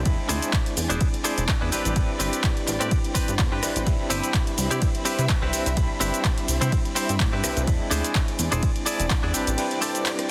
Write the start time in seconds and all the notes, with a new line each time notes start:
Already playing: C4
0.05 E2 G#3 C4 D4 E4 G#4 D5 B5, kick, ride, cabasa
0.29 D2 D4 E4 G#4 C5, open hi-hat, cabasa
0.42 closed hi-hat, cabasa
0.53 kick, clap, ride, cabasa
0.66 closed hi-hat
0.77 E2, open hi-hat, cabasa
0.89 E1 D4 E4 G#4 C5, closed hi-hat, cabasa
1.01 kick, ride, cabasa
1.14 closed hi-hat
1.24 D4 E4 G#4 C5, open hi-hat, cabasa
1.38 E1, closed hi-hat, cabasa
1.48 kick, clap, ride, cabasa
1.61 E2 D4 E4 G#4 B4
1.72 A1 G3 C4 D4 E4 G4 B4 B5, open hi-hat, cabasa
1.85 A1, closed hi-hat, cabasa
1.95 G3 C4 D4 E4 B4, kick, ride, cabasa
2.19 G1 C4 D4 G4 B4, open hi-hat, cabasa
2.33 closed hi-hat, cabasa
2.44 kick, clap, ride, cabasa
2.57 closed hi-hat
2.67 A1, clap, open hi-hat, cabasa
2.80 A2 C4 D4 G4 D5, closed hi-hat, cabasa
2.91 kick, ride, cabasa
3.04 closed hi-hat
3.15 C4 D4 G4 B4, kick, open hi-hat, cabasa
3.28 G2, closed hi-hat, cabasa
3.39 E2, kick, clap, ride, cabasa
3.52 G2 C4 D4 G4 B4
3.63 A1 G3 C4 D4 E4 B4, cross-stick, open hi-hat, cabasa
3.76 A1, closed hi-hat, cabasa
3.86 C2 G3 C4 D4 E4 B4 E5, kick, ride, cabasa
4.10 G1 C4 E4 G4 B4, open hi-hat, cabasa
4.23 closed hi-hat, cabasa
4.34 kick, clap, ride, cabasa
4.47 closed hi-hat
4.58 C2, open hi-hat, cabasa
4.71 C3 C4 E4 G4 D5, closed hi-hat, cabasa
4.82 kick, ride, cabasa
4.95 closed hi-hat
5.05 C4 E4 G4 B4, open hi-hat, cabasa
5.19 C3, closed hi-hat, cabasa
5.29 kick, clap, ride, cabasa
5.42 C2 C4 E4 G4 B4
5.53 C2 G3 C4 D4 E4 B4, open hi-hat, cabasa
5.66 C2, closed hi-hat, cabasa
5.76 C2 G3 C4 D4 E4 B5, kick, ride, cabasa
6.00 G1 C4 E4 G4 B4, open hi-hat, cabasa
6.14 closed hi-hat, cabasa
6.25 kick, clap, ride, cabasa
6.38 closed hi-hat
6.48 C2, open hi-hat, cabasa
6.61 C3 C4 E4 G4 C5, closed hi-hat, cabasa
6.72 kick, ride, cabasa
6.85 closed hi-hat
6.95 C4 E4 G4 C5, open hi-hat, cabasa
7.09 G2, closed hi-hat, cabasa
7.20 A2, kick, clap, ride, cabasa
7.32 G2 C4 E4 G4 B4
7.44 C2 G3 C4 D4 E4 B4, cross-stick, open hi-hat, cabasa
7.57 C2, closed hi-hat, cabasa
7.67 E2 G#3 C4 D4 E4 G#4 D5 B5, kick, ride, cabasa
7.91 D2 D4 E4 G#4 C5, open hi-hat, cabasa
8.04 closed hi-hat, cabasa
8.15 kick, clap, ride, cabasa
8.28 closed hi-hat
8.39 E2, open hi-hat, cabasa
8.52 E1 D4 E4 G#4 C5, closed hi-hat, cabasa
8.63 kick, ride, cabasa
8.76 closed hi-hat
8.86 D4 E4 G#4 D5, open hi-hat, cabasa
9.00 E1, closed hi-hat, cabasa
9.10 kick, clap, ride, cabasa
9.23 E2 D4 E4 G#4 D5
9.33 A1 G3 C4 D4 E4 G4 B4, open hi-hat, cabasa
9.47 A1, closed hi-hat, cabasa
9.57 G3 C4 D4 E4 B4, ride, cabasa
9.71 closed hi-hat
9.81 C4 D4 G4 A4, open hi-hat, cabasa
9.95 closed hi-hat, cabasa
10.06 clap, ride, cabasa
10.19 cross-stick, closed hi-hat